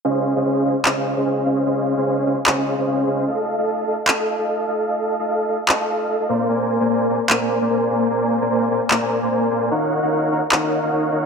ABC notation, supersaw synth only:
X:1
M:4/4
L:1/16
Q:"Swing 16ths" 1/4=149
K:Db
V:1 name="Supersaw synth"
[DAcef]3 [DAcef] [DAcef]2 [DAcef] z [DAcea] [DAcef]2 [DAcef] [DAcef]2 [DAcef]2 | [DAcef]3 [DAcef] [DAcef]2 [DAcef] z [DAcea] [DAcef]2 [DAcef] [DAcef]2 [DAcef]2 | [=Aef]3 [Aef] [Aef]2 [Aef] z [Ae=a] [Aef]2 [Aef] [Aef]2 [Aef]2 | [=Aef]3 [Aef] [Aef]2 [Aef] z [Ae=a] [Aef] [Aef]2 [Aef] [Aef] [B,Bc=df]2 |
[B,Bc=da]3 [B,Bcda] [B,Bcda]2 [B,Bcda] z [B,Bcdb] [B,Bcda]2 [B,Bcda] [B,Bcda]2 [B,Bcda]2 | [B,Bc=da]3 [B,Bcda] [B,Bcda]2 [B,Bcda] z [B,Bcdb] [B,Bcda]2 [B,Bcda] [B,Bcda]2 [B,Bcda]2 | [EBdfg]3 [EBdfg] [EBdfg]2 [EBdfg] z [EBdfg] [EBdfg]2 [EBdfg] [EBdfg]2 [EBdfg]2 |]